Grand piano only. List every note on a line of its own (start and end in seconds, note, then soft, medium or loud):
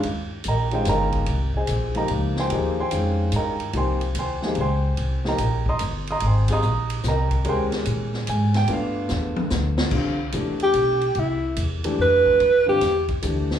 0.48 0.73 A#4 medium
0.48 0.73 D#5 medium
0.48 0.73 G5 medium
0.48 0.73 A#5 medium
0.72 1.24 D#3 medium
0.72 1.24 G#3 medium
0.72 1.25 C#4 medium
0.72 1.25 F4 medium
0.72 0.87 G4 medium
0.72 0.87 C5 medium
0.72 0.87 D#5 medium
0.72 0.87 G5 medium
0.89 1.52 A#4 medium
0.89 1.52 D#5 medium
0.89 1.52 G5 medium
0.89 1.52 A#5 loud
1.57 1.94 G#4 medium
1.57 1.94 C5 medium
1.57 1.94 D#5 medium
1.57 1.94 G#5 medium
1.95 2.48 F3 medium
1.95 2.48 A#3 medium
1.95 2.48 D#4 medium
1.95 2.48 G4 medium
1.95 2.10 A#4 medium
1.95 2.10 D#5 medium
1.95 2.10 G5 medium
1.95 2.10 A#5 medium
2.40 2.52 C5 medium
2.40 2.52 G5 medium
2.40 2.52 G#5 medium
2.40 2.52 C6 loud
2.49 2.75 F3 medium
2.49 2.75 A#3 medium
2.49 2.75 D#4 medium
2.49 2.76 G4 medium
2.54 2.80 G#4 medium
2.54 2.80 C5 medium
2.54 2.79 D#5 medium
2.54 2.79 G#5 medium
2.80 3.31 C5 medium
2.80 3.31 G5 medium
2.80 3.31 G#5 medium
2.80 3.30 C6 loud
2.91 3.55 D#3 medium
2.91 3.55 G#3 medium
2.91 3.55 C#4 medium
2.91 3.55 F4 medium
3.36 3.73 A#4 medium
3.36 3.73 D#5 medium
3.36 3.73 G5 medium
3.36 3.73 A#5 medium
3.73 3.98 F3 medium
3.73 3.99 A#3 medium
3.73 3.99 D#4 medium
3.73 3.99 G4 medium
3.73 4.02 C6 medium
3.77 4.02 C5 medium
3.77 4.03 G5 medium
3.77 4.03 G#5 medium
4.19 4.44 C5 medium
4.19 4.44 G5 medium
4.19 4.44 G#5 medium
4.19 4.44 C6 medium
4.42 4.55 F3 medium
4.42 4.55 A#3 medium
4.42 4.56 D#4 medium
4.42 4.56 G4 medium
4.42 4.58 G#4 medium
4.42 4.58 C5 medium
4.42 4.58 G#5 medium
4.47 4.58 D#5 medium
4.61 5.23 C5 medium
4.61 5.23 G5 medium
4.61 5.23 G#5 medium
4.61 5.23 C6 loud
5.24 5.37 F3 medium
5.24 5.37 A#3 medium
5.24 5.38 D#4 medium
5.24 5.38 G4 medium
5.28 5.65 A#4 medium
5.28 5.65 D#5 medium
5.28 5.65 G5 medium
5.28 5.65 A#5 medium
5.69 5.81 D#5 medium
5.69 5.81 A#5 medium
5.69 5.81 C6 medium
5.69 5.81 D#6 medium
6.11 6.23 D#5 medium
6.11 6.23 A#5 medium
6.11 6.23 C6 medium
6.11 6.23 D#6 loud
6.26 6.51 C5 medium
6.26 6.51 G5 medium
6.26 6.51 G#5 medium
6.26 6.51 C6 medium
6.49 6.61 G3 medium
6.49 6.61 C4 medium
6.49 6.62 F4 medium
6.49 6.62 G#4 medium
6.49 7.02 D#5 medium
6.49 7.02 D#6 loud
6.53 7.02 A#5 medium
6.53 7.02 C6 medium
7.08 7.44 A#4 medium
7.08 7.45 D#5 medium
7.08 7.45 G5 medium
7.08 7.44 A#5 medium
7.45 8.60 G#3 medium
7.45 8.61 C#4 medium
7.45 8.61 G4 medium
7.45 8.61 A#4 medium
7.49 7.64 C5 medium
7.49 7.64 G5 medium
7.49 7.64 G#5 medium
7.49 7.64 C6 loud
8.29 8.55 G#5 loud
8.57 8.69 G5 loud
8.68 9.84 A3 medium
8.68 9.84 B3 medium
8.68 9.84 D4 medium
8.68 9.85 F4 medium
8.73 9.09 F5 medium
9.92 10.17 D3 medium
9.92 10.17 G3 medium
9.92 10.17 C4 medium
9.92 10.18 F4 medium
10.34 10.97 E3 medium
10.34 10.97 A3 medium
10.34 10.98 D4 medium
10.34 10.98 G4 medium
11.85 12.38 E3 medium
11.85 12.38 A3 medium
11.85 12.38 D4 medium
11.85 12.38 G4 medium
12.66 12.80 D3 medium
12.66 12.80 G3 medium
12.66 12.80 C4 medium
12.66 12.80 F4 medium
13.22 13.59 E3 medium
13.22 13.59 A3 medium
13.22 13.59 D4 medium
13.22 13.59 G4 medium